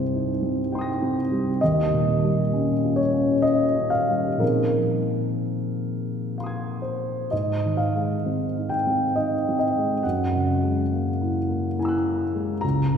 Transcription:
0.00 1.58 C2 soft
0.00 1.63 G2 soft
0.00 1.32 G3 soft
0.00 0.30 C4 soft
0.00 1.15 C5 medium
0.14 0.60 D#4 soft
0.43 0.89 C4 soft
0.72 1.19 D#4 soft
0.72 1.58 G5 soft
0.72 1.59 C6 soft
0.79 1.61 D#6 soft
0.79 1.62 A#6 soft
1.02 1.50 C4 soft
1.32 1.61 G3 soft
1.61 4.39 D#2 soft
1.61 2.99 D#5 medium
1.93 2.42 A#2 soft
2.24 2.72 G3 soft
2.53 3.02 C#4 soft
2.85 3.33 F4 soft
2.96 3.44 C#5 medium
3.14 3.64 C#4 soft
3.42 3.96 F4 soft
3.42 3.91 D#5 medium
3.77 4.29 C#4 soft
3.90 4.40 F5 medium
4.09 4.42 G3 soft
4.38 7.26 A#2 soft
4.38 7.26 F3 soft
4.38 7.27 C4 soft
4.38 7.27 D#4 soft
4.38 7.28 G#4 soft
4.38 6.35 A#4 medium
6.38 7.29 F5 soft
6.38 7.30 C6 soft
6.44 7.32 D#6 soft
6.44 7.33 G#6 soft
6.82 7.31 C5 soft
7.31 10.00 G#2 soft
7.31 7.78 D#5 medium
7.66 8.14 D#3 soft
7.77 8.69 F5 medium
7.95 8.44 G#3 soft
8.26 8.74 C4 soft
8.57 9.04 D#4 soft
8.69 9.15 G5 medium
8.87 9.34 C4 soft
9.16 9.64 D#4 soft
9.16 9.57 D#5 medium
9.49 9.94 C4 soft
9.59 10.03 D#5 medium
9.78 10.05 G#3 soft
10.03 12.60 F#2 soft
10.03 11.77 F#5 medium
10.35 10.81 C#3 soft
10.63 11.09 G#3 soft
10.92 11.38 A#3 soft
11.22 11.67 E4 soft
11.49 11.95 A#3 soft
11.79 12.24 E4 soft
11.79 12.61 G#5 soft
11.79 12.60 A#5 soft
11.85 12.63 E6 soft
11.85 12.65 F#6 soft
12.07 12.52 A#3 soft
12.35 12.63 G#3 soft
12.61 12.97 C#2 soft
12.61 12.97 A#5 medium
12.93 12.97 G#2 soft

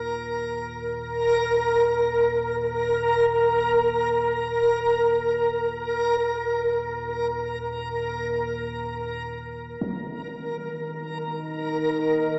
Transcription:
0.00 9.81 D#2 medium
0.00 9.81 A#2 medium
0.00 9.81 A#4 medium
9.81 12.39 D#2 medium
9.81 12.39 A#2 medium
9.81 12.39 D#3 medium
9.81 12.39 A#4 medium
9.81 impact medium
10.95 12.39 D#5 medium
11.70 12.39 A#4 medium

